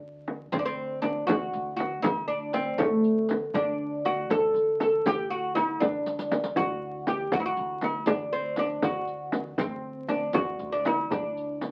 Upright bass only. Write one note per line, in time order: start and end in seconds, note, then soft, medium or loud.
0.00 0.49 D2 medium
0.53 1.24 D2 loud
1.29 1.51 D2 medium
1.53 2.00 D2 loud
2.04 2.75 D2 medium
2.78 3.50 D2 medium
3.54 4.26 D2 loud
4.30 4.53 D2 loud
4.54 5.01 D2 loud
5.06 5.78 D2 medium
5.81 6.53 D2 medium
6.57 7.29 D2 loud
7.33 7.55 D2 medium
7.57 8.04 D2 medium
8.08 8.80 D2 medium
8.83 9.55 D2 medium
9.59 10.31 D2 loud
10.35 10.58 D2 medium
10.60 11.06 D2 medium
11.10 11.71 D2 medium